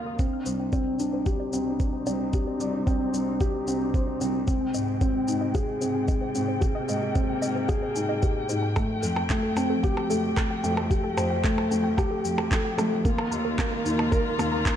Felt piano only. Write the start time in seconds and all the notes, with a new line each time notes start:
Already playing: A#3 A#4 F5
0.19 C4
0.73 C4
0.99 D4
1.26 G4
1.53 C4
2.06 C4
2.34 G4
2.60 D5
2.87 C4
3.40 G4
3.68 C4
3.94 C5
4.21 C4
4.47 C4
5.01 C4
5.28 D#4
5.55 G#4
5.81 C4
6.35 C4
6.61 G#4
6.88 D#5
7.15 C4
7.69 G#4
7.96 D#4
8.23 G4
8.49 D#4
8.76 A3
9.30 A3
9.57 C4
9.84 G4
10.10 A3
10.64 A3
10.90 G4
11.17 C5
11.44 A3
11.71 A3
11.98 G4
12.52 A4
12.79 A3
13.05 A#3
13.59 A#3
13.86 D#4
14.12 A#4
14.39 A#3